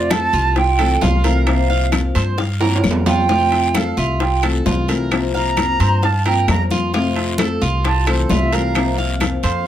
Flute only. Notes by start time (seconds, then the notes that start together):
Already playing: D5
0.12 A5
0.58 G5
1.03 F5
1.48 F5
3.07 G5
3.76 F5
3.99 E5
4.22 G5
5.36 A#5
6.05 A5
6.27 G5
6.50 A#5
7.86 A5
8.08 C5
8.31 E5
8.53 F5
9.44 F5